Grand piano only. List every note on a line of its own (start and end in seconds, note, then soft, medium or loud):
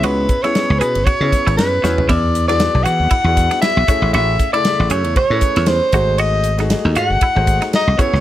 0.00 0.32 B3 medium
0.00 0.32 C#4 medium
0.00 0.32 E4 medium
0.00 0.33 G#4 medium
0.00 0.33 C#5 medium
0.43 1.07 B3 medium
0.43 1.07 C#4 medium
0.43 1.07 E4 medium
0.43 1.07 G#4 medium
0.43 1.07 C#5 medium
1.21 1.74 B3 medium
1.21 1.75 C#4 medium
1.21 1.75 E4 medium
1.21 1.75 G#4 medium
1.21 1.75 C#5 medium
1.82 2.09 B3 medium
1.82 2.09 C#4 medium
1.82 2.09 E4 medium
1.82 2.09 G#4 medium
1.82 2.09 C#5 medium
2.48 3.12 B3 medium
2.48 3.12 E4 medium
2.48 3.12 F#4 medium
2.48 3.12 G#4 medium
2.48 3.12 D5 medium
3.26 3.79 B3 medium
3.26 3.79 E4 medium
3.26 3.80 F#4 medium
3.26 3.80 G#4 medium
3.26 3.80 D5 medium
3.88 4.42 A3 medium
3.88 4.42 C#4 medium
3.88 4.43 E4 medium
3.88 4.43 G#4 medium
3.88 4.43 C#5 medium
4.53 5.17 C#3 medium
4.53 5.17 A3 medium
4.53 5.17 E4 medium
4.53 5.17 G#4 medium
4.53 5.18 E5 medium
5.30 5.84 A3 medium
5.30 5.84 C#4 medium
5.30 5.84 E4 medium
5.30 5.84 G#4 medium
5.30 5.84 B4 medium
5.92 6.47 A3 medium
5.92 6.47 D#4 medium
5.92 6.47 F#4 medium
5.92 6.48 G#4 medium
5.92 6.48 C5 medium
6.57 7.21 A3 medium
6.57 7.22 D#4 medium
6.57 7.22 F#4 medium
6.57 7.22 G#4 medium
6.57 7.23 D#5 medium
7.35 7.89 A3 medium
7.35 7.89 D#4 medium
7.35 7.89 F#4 medium
7.35 7.90 G#4 medium
7.35 7.90 C5 medium
7.97 8.20 B3 medium
7.97 8.20 C#4 medium
7.97 8.20 E4 medium
7.97 8.20 G#4 medium
7.97 8.20 C#5 medium